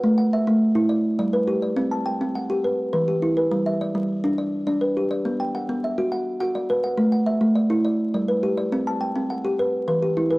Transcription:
\new Staff \with { instrumentName = "Kalimba" } { \time 12/8 \key g \major \tempo 4. = 138 << { fis''8 fis''8 e''4. r8 d''4 d''8 b'4 d''8~ | d''8 a''8 g''4 fis''4 b'4 b'8 g'4 b'8~ | b'8 e''8 d''4. r8 d''4 d''8 b'4 d''8~ | d''8 g''8 fis''4 e''4 fis''4 fis''8 d''4 fis''8~ |
fis''8 fis''8 e''4 d''4 d''4 d''8 b'4 d''8~ | d''8 a''8 g''4 fis''4 b'4 b'8 g'4 b'8 | } \\ { a4 r8 a4 e'8 r4 g4 g'4 | c'4 r8 c'4 g'8 r4 e4 e'4 | g4 r8 g4 d'4 r8 d'4 g'4 | b4 r8 b4 fis'4 r8 fis'4 b'4 |
a4 r8 a4 e'8 r4 g4 g'4 | c'4 r8 c'4 g'8 r4 e4 e'4 | } >> }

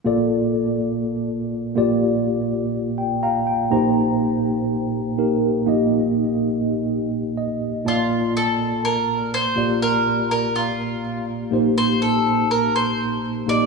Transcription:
<<
  \new Staff \with { instrumentName = "Mandolin" } { \time 4/4 \key bes \major \tempo 4 = 123 r1 | r1 | r1 | r1 |
f'4 a'4 bes'4 c''4 | bes'4 bes'8 f'4. r4 | c''8 a'4 bes'8 c''4. d''8 | }
  \new Staff \with { instrumentName = "Tine electric piano" } { \time 4/4 \key bes \major << { r1 | r2 g''8 <f'' g'' bes''>8 g''8 bes''8 | r1 | r2. ees''4 |
r1 | r1 | r1 | } \\ { <bes f' a' d''>2.~ <bes f' a' d''>8 <bes f' g' d''>8~ | <bes f' g' d''>2.~ <bes f' g' d''>8 <bes ees' g' c''>8~ | <bes ees' g' c''>2~ <bes ees' g' c''>8 <bes ees' g' bes'>4 <bes ees' g' ees''>8~ | <bes ees' g' ees''>2.~ <bes ees' g' ees''>8 r8 |
<bes f' d'' a''>2.~ <bes f' d'' a''>8 <bes f' g' d''>8~ | <bes f' g' d''>2.~ <bes f' g' d''>8 <bes ees' g' c''>8~ | <bes ees' g' c''>2.~ <bes ees' g' c''>8 <bes ees' g' ees''>8 | } >> }
  \new Staff \with { instrumentName = "Tine electric piano" } { \clef bass \time 4/4 \key bes \major <bes,, bes,>2.~ <bes,, bes,>8 <bes,, bes,>8~ | <bes,, bes,>2.~ <bes,, bes,>8 <bes,, bes,>8~ | <bes,, bes,>2.~ <bes,, bes,>8 <bes,, bes,>8~ | <bes,, bes,>2.~ <bes,, bes,>8 r8 |
<bes,, bes,>2.~ <bes,, bes,>8 <bes,, bes,>8~ | <bes,, bes,>2.~ <bes,, bes,>8 <bes,, bes,>8~ | <bes,, bes,>2.~ <bes,, bes,>8 <bes,, bes,>8 | }
>>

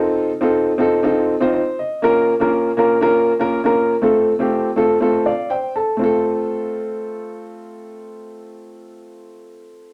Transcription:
\new Staff \with { instrumentName = "Upright piano" } { \time 4/4 \key f \major \tempo 4 = 121 << { r2. c''8 ees''8~ | ees''8 r2. r8 | r2 r8 <d'' f''>8 <c'' g''>8 <a' a''>8~ | <a' a''>8 r2. r8 |
r1 | } \\ { <c' ees' f' a'>8 r16 <c' ees' f' a'>8 r16 <c' ees' f' a'>8 <c' ees' f' a'>8 r16 <c' ees' f' c''>8 r8. | <bes des' f' bes'>8 r16 <bes des' f' bes'>8 r16 <bes des' f' bes'>8 <bes des' f' bes'>8 r16 <bes des' f' bes'>8 <bes des' f' bes'>8 r16 | <a c' f' a'>8 r16 <a c' f' g'>8 r16 <a c' f' a'>8 <a c' f' a'>8 r4. | <a c' f' a'>1~ |
<a c' f' a'>1 | } >> }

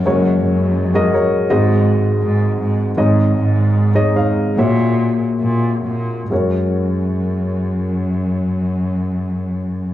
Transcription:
<<
  \new Staff \with { instrumentName = "Upright piano" } { \time 4/4 \key fis \major \tempo 4 = 72 <gis fis' ais' cis''>4~ <gis fis' ais' cis''>16 <gis fis' ais' dis''>16 <gis fis' ais' cis''>8 <gis fis' bis' dis''>2 | <gis dis' cis'' dis''>4~ <gis dis' cis'' dis''>16 <gis dis' cis'' dis''>16 <gis dis' cis'' eis''>8 <ais fis' cis'' e''>2 | <gis fis' ais' cis''>1 | }
  \new Staff \with { instrumentName = "Upright piano" } { \clef bass \time 4/4 \key fis \major <fis,, fis,>2 <gis,, gis,>2 | <gis,, gis,>2 <ais,, ais,>2 | fis,1 | }
  \new Staff \with { instrumentName = "Cello" } { \clef bass \time 4/4 \key fis \major fis,8 fis,4. gis,4 gis,8 gis,8 | gis,8 gis,4. ais,4 ais,8 ais,8 | fis,1 | }
>>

